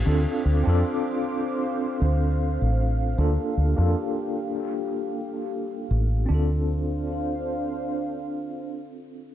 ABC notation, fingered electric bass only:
X:1
M:4/4
L:1/16
Q:"Swing 16ths" 1/4=77
K:Dm
V:1 name="Fingered electric bass" clef=bass
D,, z D,, F,, z6 D,,3 A,,,3 | D,, z D,, F,, z8 z2 A,,,2 | D,,12 z4 |]